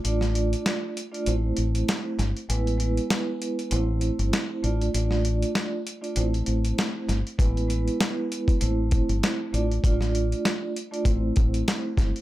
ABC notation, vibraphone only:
X:1
M:4/4
L:1/16
Q:"Swing 16ths" 1/4=98
K:Am
V:1 name="Vibraphone"
[A,DFd]6 z [A,DFd] [A,CEc]6 z2 | [^G,B,EB]2 [G,B,EB]6 [A,CEc]6 [A,DFd] z | [A,DFd]6 z [A,DFd] [A,CEc]6 z2 | [^G,B,EB]2 [G,B,EB]6 [A,CEc]6 [A,DFd] z |
[A,DFd]6 z [A,DFd] [A,CEc]6 z2 |]